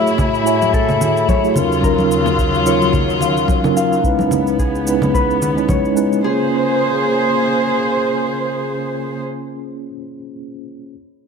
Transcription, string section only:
Already playing: A2 E4
1.56 D#2 C#3 F#3 F4
4.04 C#2 B3
6.24 C#3 A#3 G#4 C5

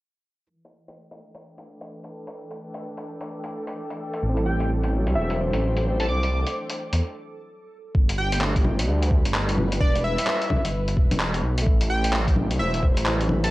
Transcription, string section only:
0.50 E3
0.90 A3
1.08 G5
1.22 D4
1.37 B4
5.08 C5
8.81 B4
12.52 C5

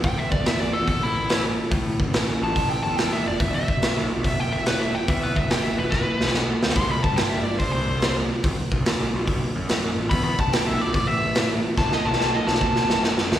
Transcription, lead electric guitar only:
0.05 G5
0.18 E5
0.31 D5
0.47 E5
0.60 D5
0.73 A4
0.89 A4
1.03 E4
2.44 A5
2.70 G5
2.83 A5
2.97 G5
3.13 E5
3.27 D5
3.41 E5
3.56 E5
4.25 E5
4.40 G5
4.53 E5
4.67 B4
4.82 E5
4.95 G5
5.10 E5
5.23 B4
5.36 E5
5.51 G5
5.63 E5
5.78 B4
5.92 B4
6.76 C6
6.91 B5
7.04 A5
7.16 G5
7.30 E5
7.44 D5
7.59 C5
7.72 C5
10.10 B5
10.24 B5
10.40 A5
10.53 G5
10.67 E5
10.81 D5
10.96 D5
11.08 E5
11.78 A5
11.93 D#5
12.05 A5
12.20 A5
12.34 D#5
12.47 A5
12.61 A5

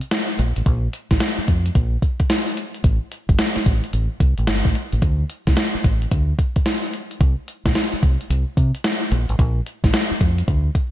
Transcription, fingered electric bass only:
0.39 A#1
0.56 A1
0.66 A#1
1.11 A1
1.38 muted fingered electric bass stroke
1.48 F2
1.75 A#1
2.84 A1
3.29 G1
3.57 muted fingered electric bass stroke
3.66 A1
3.93 A1
4.20 C2
4.38 A1
4.65 A1
4.93 A1
5.02 D2
5.47 C2
5.75 muted fingered electric bass stroke
5.84 A1
6.12 D2
7.21 C2
7.65 A#1
7.93 muted fingered electric bass stroke
8.03 C2
8.30 C2
8.57 C3
9.12 A#1
9.29 A1
9.39 A#1
9.84 A1
10.11 muted fingered electric bass stroke
10.21 F2
10.48 D2

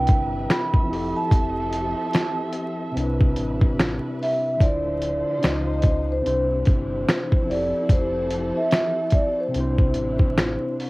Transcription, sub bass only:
Already playing: C2
0.09 G1
0.90 F1
1.32 F1
2.96 C2
3.37 A1
4.61 D1
5.44 C#2
6.26 C2
6.68 G1
7.50 F1
7.90 F1
9.55 C2
9.96 A1

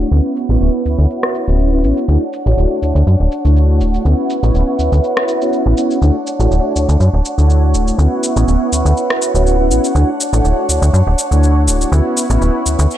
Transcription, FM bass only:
0.12 D2
0.49 A1
0.61 D1
0.86 D2
0.99 D2
1.48 D1
1.84 A1
2.08 D2
2.46 A1
2.57 D1
2.82 D2
2.95 D2
3.07 F#2
3.20 D1
3.45 D2
3.81 D1
4.05 D2
4.43 A1
4.54 D1
4.79 D2
4.92 D2
5.66 A1
6.02 D2
6.40 A1
6.51 D1
6.76 D2
6.89 D2
7.00 F#2
7.14 D1
7.38 D2
7.74 D1
7.99 D2
8.36 A1
8.48 D1
8.72 D2
8.85 D2
9.35 D1
9.70 A1
9.95 D2
10.33 A1
10.44 D1
10.69 D2
10.82 D2
10.93 F#2
11.07 D1
11.31 D2
11.68 D1
11.92 D2
12.30 A1
12.41 D1
12.66 D2
12.79 D2

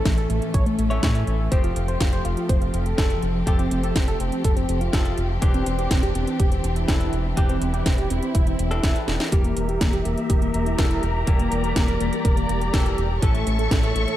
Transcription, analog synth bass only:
0.05 A1
0.30 A1
0.54 A1
0.79 A1
1.03 A2
1.27 A1
1.52 F1
1.76 F1
2.01 F1
2.25 F1
2.49 F1
2.74 F1
2.98 F1
3.23 F1
3.47 F1
3.71 F1
3.96 F1
4.20 F1
4.44 F1
4.69 F1
4.93 F1
5.18 F1
5.42 E1
5.66 E1
5.91 E1
6.15 E1
6.40 E1
6.64 E1
6.88 E1
7.13 E1
7.37 E1
7.62 E1
7.86 E1
8.10 E1
8.35 E1
8.59 E1
8.84 E1
9.08 E1
9.32 E1
9.57 E1
9.81 E1
10.05 E1
10.30 E1
10.54 E1
10.79 E1
11.03 E1
11.27 E1
11.52 E1
11.76 E1
12.00 E1
12.25 E1
12.49 E1
12.74 E1
12.98 E1
13.22 A1
13.47 A1
13.71 A1
13.95 A1

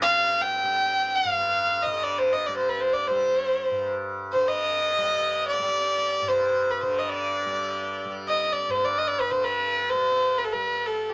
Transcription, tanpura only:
Already playing: G2 D3
0.00 G3
0.63 G3
1.24 G2
1.86 D3
2.48 G3
3.10 G3
3.70 G2
4.35 D3
4.98 G3
5.59 G3
6.22 G2
6.82 D3
7.46 G3
8.05 G3
8.68 G2
9.31 D3
9.94 G3
10.54 G3

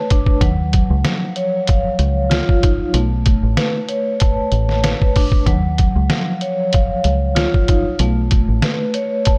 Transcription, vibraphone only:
Already playing: B4 C#5 A5
0.10 D4
0.42 F#3
1.05 F3
1.36 C#5
1.68 F5
2.30 F4
2.62 D#4
2.95 A3
3.57 B4
3.89 C#5
4.20 A5
4.84 B4
5.16 D4
5.47 F#3
6.10 F3
6.42 C#5
6.74 F5
7.35 F4
7.68 D#4
8.01 A3
8.62 B4
8.95 C#5
9.26 A5

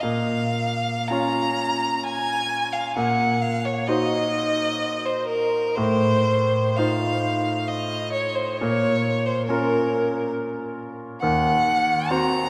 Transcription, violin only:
0.01 F5
1.08 A#5
2.04 G#5
2.73 F5
2.96 F#5
3.42 F5
3.65 C#5
3.87 D#5
5.06 C5
5.28 A#4
5.76 C5
6.77 F5
7.68 D#5
8.13 C#5
8.35 C5
8.57 C#5
9.26 C5
9.46 A#4
11.21 F#5
12.09 A#5

